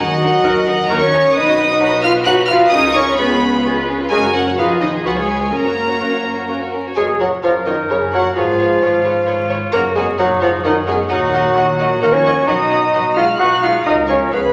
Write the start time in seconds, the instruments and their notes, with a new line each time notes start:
Already playing: flute F#4
0.00 double bass section D#2, cello section F#3, french horn section F#3, viola section D#5, violin section F#5
0.22 violin section D#4 A#4
0.43 double bass section D#2, bassoon D#3, violin section D#4 A#4, clarinet F#4, cor anglais A#4
0.67 violin section D#4 A#4
0.88 double bass section D#2, bassoon D#3, cello section A#3, french horn section A#3, violin section D#4 A#4 A#5, clarinet F#4, flute A#4, cor anglais A#4, viola section C#5
0.99 cello section C#4, flute C#5, violin section C#6
1.03 french horn section C#4
1.13 violin section D#4 A#4
1.33 double bass section B1, cello section D#4, violin section D#4 B4 D#6, viola section B4, flute D#5
1.38 french horn section D#4
1.47 violin section F#4 D#5
1.58 violin section D#4 B4
1.70 violin section F#4 D#5
1.80 bassoon F#3, violin section D#4 B4, clarinet F#4, cor anglais B4, viola section B4
1.92 violin section F#4 D#5
2.03 violin section D#4 B4 F6, cello section F4, french horn section F4, flute F5
2.16 violin section F#4 D#5
2.25 bassoon F#3, violin section D#4 B4 F#6, cello section F#4, clarinet F#4, french horn section F#4, cor anglais B4, flute F#5
2.39 violin section F#4 D#5
2.47 violin section D#4 B4 F6, cello section F4, flute F5
2.52 french horn section F4
2.62 violin section F#4 D#5
2.70 double bass section C#2, violin section C#4 G#4 D#6, cello section D#4, french horn section D#4, viola section A#4, flute D#5
2.84 violin section F4 B4
2.95 violin section C#4 G#4 C#6, cello section C#4, french horn section C#4, flute C#5
3.07 violin section F4 B4
3.18 bassoon G#3, cello section B3, french horn section B3, violin section C#4 G#4 B5, clarinet F4, viola section G#4, flute B4, cor anglais C#5
3.30 violin section F4 B4
3.42 violin section C#4 G#4
3.53 violin section F4 B4
3.65 bassoon G#3, violin section C#4 G#4, clarinet F4, viola section B4, cor anglais C#5
3.76 violin section F4 B4
3.88 violin section C#4 G#4
3.99 violin section F4 B4
4.10 double bass section F#1, french horn section G#3, cello section G#3, bassoon A#3, violin section C#4 A#4 G#5, clarinet F#4, flute G#4, viola section A#4, cor anglais C#5
4.23 violin section F#4 C#5
4.34 cello section F#3, french horn section F#3, violin section C#4 A#4 F#5, flute F#4
4.46 violin section F#4 C#5
4.57 double bass section B1, french horn section F3, cello section F3, bassoon B3, violin section D#4 B4 F5, flute F4, viola section G#4, clarinet G#4, cor anglais B4
4.69 violin section G#4 D#5
4.81 french horn section D#3, cello section D#3, violin section D#4 B4 D#5, flute D#4
4.93 violin section G#4 D#5
5.04 double bass section C#2, french horn section F#3, cello section F#3, bassoon B3, clarinet F4, flute F#4, violin section G#4 B4 F#5, viola section C#5, cor anglais C#5
5.16 cello section G#3, french horn section G#3, violin section F4 C#5 G#5, flute G#4
5.28 violin section G#4 B4
5.40 violin section F4 C#5
5.52 double bass section F#2, cello section A#3, french horn section A#3, violin section C#4 A#4 A#5, flute A#4, viola section A#4
5.64 violin section F#4 C#5
5.75 violin section C#4 A#4
5.88 violin section F#4 C#5
6.00 bassoon A#3, violin section C#4 A#4, clarinet F#4, cor anglais C#5
6.11 violin section F#4 C#5
6.24 violin section C#4 A#4
6.35 violin section F#4 C#5
6.48 bassoon A#3, violin section C#4 A#4, clarinet F#4, cor anglais C#5
6.61 violin section F#4 C#5
6.73 violin section C#4 A#4
6.85 violin section F#4 C#5
6.96 double bass section F#1, cello section F#2, french horn section B2, bassoon G#3, flute G#4, clarinet G#4, viola section A#4 C#5, violin section C#5 G#5
7.19 french horn section A#2, bassoon F#3, clarinet F#4, flute F#4, viola section A#4 C#5, violin section C#5 F#5
7.42 double bass section F#1, cello section F#2, french horn section G#2, bassoon F3, flute F4, clarinet F4, cor anglais A#4, viola section A#4 C#5, violin section C#5 F5
7.65 french horn section F#2, bassoon D#3, clarinet D#4, flute D#4, viola section A#4 C#5, violin section C#5 D#5
7.90 double bass section F#1, cello section F#2, french horn section F#2, bassoon C#3, clarinet C#4, viola section A#4 C#5, violin section C#5, flute C#5
8.13 french horn section A#2, bassoon F#3, flute F#4, clarinet F#4, viola section A#4 C#5, violin section C#5 F#5
8.35 double bass section G#1, cello section G#2, french horn section G#2, bassoon F3, flute F4, clarinet F4, cor anglais G#4, viola section G#4 B4, violin section C#5 F5
8.59 viola section G#4 B4, violin section C#5
8.82 double bass section G#1, cello section G#2, cor anglais F4, viola section G#4 B4, violin section C#5
9.04 viola section G#4 B4, violin section C#5
9.27 double bass section G#1, cello section G#2, cor anglais F4, viola section G#4 B4, violin section C#5
9.49 viola section G#4 B4, violin section C#5
9.73 double bass section F#1, cello section F#2, french horn section C#3, bassoon A#3, cor anglais F#4, viola section A#4, flute A#4, clarinet A#4, violin section C#5 F#5 A#5
9.95 french horn section B2, bassoon G#3, flute G#4, clarinet G#4, viola section A#4, violin section C#5 F#5 G#5
10.18 double bass section F#1, cello section F#2, french horn section A#2, bassoon F#3, cor anglais D#4, clarinet F#4, flute F#4, viola section A#4, violin section C#5 F#5
10.41 french horn section G#2, bassoon F3, flute F4, clarinet F4, viola section A#4, violin section C#5 F5 F#5
10.64 double bass section F#1, cello section F#2, french horn section F#2, bassoon D#3, cor anglais C#4, flute D#4, clarinet D#4, viola section A#4, violin section C#5 D#5 F#5
10.87 french horn section B2, bassoon G#3, flute G#4, clarinet G#4, viola section A#4, violin section C#5 F#5 G#5
11.09 cello section D#2, double bass section D#2, french horn section A#2, bassoon F#3, cor anglais D#4, viola section D#4 A#4, flute F#4, clarinet F#4, violin section D#5 F#5
11.33 viola section D#4 A#4, violin section D#5 F#5
11.56 cello section D#2, double bass section D#2, viola section D#4 A#4, cor anglais F#4, violin section D#5 F#5
11.78 viola section D#4 A#4, violin section D#5 F#5
12.01 cello section D#2, double bass section D#2, french horn section D#3, bassoon A#3, viola section D#4 A#4, flute A#4, clarinet A#4, violin section D#5 F#5 A#5
12.12 french horn section F3, bassoon C#4, flute C#5, clarinet C#5, violin section C#6
12.25 viola section D#4 A#4, violin section D#5 F#5
12.47 double bass section B1, cello section B2, french horn section F#3, bassoon D#4, viola section D#4 B4, flute D#5, violin section D#5 F#5 D#6, clarinet D#5
12.70 viola section D#4 B4, violin section D#5 F#5
12.93 double bass section B1, cello section B2, viola section D#4 B4, cor anglais F#4, violin section D#5 F#5
13.16 french horn section G#3, viola section D#4 B4, bassoon F4, violin section D#5 F#5 F6, flute F5, clarinet F5
13.38 double bass section B1, cello section B2, french horn section B3, cor anglais D#4, viola section D#4 B4, bassoon F#4, violin section D#5 F#5 F#6, flute F#5, clarinet F#5
13.61 french horn section G#3, viola section D#4 B4, bassoon F4, violin section D#5 F#5 F6, flute F5, clarinet F5
13.84 cello section C#2, double bass section C#2, french horn section F#3, bassoon D#4, viola section G#4, cor anglais A#4, violin section C#5 F5 D#6, flute D#5, clarinet D#5
14.07 french horn section F3, bassoon C#4, viola section G#4, flute C#5, clarinet C#5, violin section C#5 F5 C#6
14.31 cello section C#2, double bass section C#2, french horn section F3, bassoon B3, viola section G#4, cor anglais G#4, flute B4, clarinet B4, violin section C#5 F5 B5